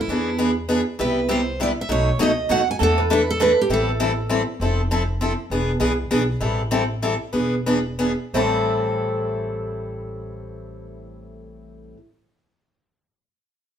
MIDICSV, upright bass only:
0, 0, Header, 1, 2, 480
1, 0, Start_track
1, 0, Key_signature, 0, "minor"
1, 0, Tempo, 300903
1, 150, Time_signature, 3, 2, 24, 8
1, 7346, Key_signature, 0, "minor"
1, 10710, Tempo, 313972
1, 12150, Tempo, 339943
1, 13110, Tempo, 354191
1, 20495, End_track
2, 0, Start_track
2, 0, Title_t, "Upright bass"
2, 0, Program_c, 0, 32
2, 128, Note_on_c, 0, 40, 89
2, 1287, Note_off_c, 0, 40, 0
2, 1589, Note_on_c, 0, 36, 94
2, 2739, Note_off_c, 0, 36, 0
2, 3011, Note_on_c, 0, 35, 88
2, 3400, Note_off_c, 0, 35, 0
2, 3487, Note_on_c, 0, 37, 80
2, 3902, Note_off_c, 0, 37, 0
2, 3980, Note_on_c, 0, 39, 75
2, 4390, Note_off_c, 0, 39, 0
2, 4478, Note_on_c, 0, 40, 88
2, 5625, Note_off_c, 0, 40, 0
2, 5893, Note_on_c, 0, 33, 91
2, 7050, Note_off_c, 0, 33, 0
2, 7334, Note_on_c, 0, 29, 91
2, 8492, Note_off_c, 0, 29, 0
2, 8774, Note_on_c, 0, 28, 83
2, 9164, Note_off_c, 0, 28, 0
2, 9259, Note_on_c, 0, 36, 78
2, 9672, Note_off_c, 0, 36, 0
2, 9759, Note_on_c, 0, 35, 73
2, 10163, Note_off_c, 0, 35, 0
2, 10222, Note_on_c, 0, 33, 83
2, 11373, Note_off_c, 0, 33, 0
2, 11660, Note_on_c, 0, 28, 78
2, 12829, Note_off_c, 0, 28, 0
2, 13108, Note_on_c, 0, 33, 78
2, 17968, Note_off_c, 0, 33, 0
2, 20495, End_track
0, 0, End_of_file